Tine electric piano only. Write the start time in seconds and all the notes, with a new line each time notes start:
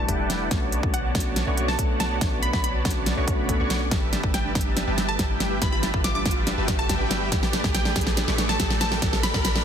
0.07 G3 A3 D4 G4
0.50 A3 C#4 D4 F#4
0.82 A3 C#4 D4 F#4
1.14 A3 C#4 D4 F#4
1.46 A3 C#4 D4 F#4
1.78 A3 D4 A4
2.20 A3 C#4 D4 F#4
2.52 A3 C#4 D4 F#4
2.84 A3 C#4 D4 F#4
3.16 A3 C#4 D4 F#4
3.48 A3 C#4 D4 A4